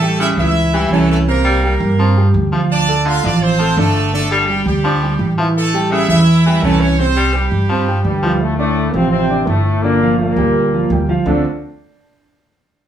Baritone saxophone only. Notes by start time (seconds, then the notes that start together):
0.20 C#3
0.73 E3
1.44 G3
1.99 F3
2.52 F3
3.05 D3
3.58 F3
4.32 G3
4.84 F3
5.37 F3
5.92 C#3
6.46 E3
7.17 G3
7.69 F3
8.22 F3